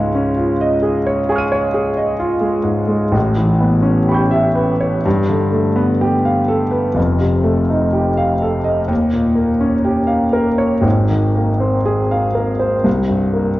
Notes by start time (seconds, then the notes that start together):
Already playing: C#2 G#2 G#3
0.15 C#4
0.37 F4
0.61 D#5
0.82 G#4
1.06 C#5
1.29 G#4 G#5 C#6
1.35 F6 D#7
1.52 C#5
1.74 G#4
1.97 D#5
2.20 F4
2.41 G#3
2.63 G#2
2.88 G#3
3.12 A1 A2
3.37 E3
3.60 B3
3.82 C#4
4.09 G4 B5 C#6
4.14 G6
4.31 E5
4.55 B4
4.80 C#5
5.06 G2
5.29 D3
5.52 A3
5.76 B3
6.01 G4
6.25 F5
6.48 A4
6.71 B4
6.95 F1 F2
7.21 C3
7.44 A3
7.70 D#4
7.93 G4
8.17 F5
8.42 A4
8.64 D#5
8.88 D#2
9.13 A#2
9.35 A#3
9.60 C#4
9.85 G4
10.07 F5
10.33 A#4
10.58 C#5
10.81 G#1 G#2
11.09 D#3
11.36 A#3
11.60 C4
11.86 G#4
12.11 F5
12.35 A#4
12.60 C5
12.84 C2
13.08 G2
13.33 A#3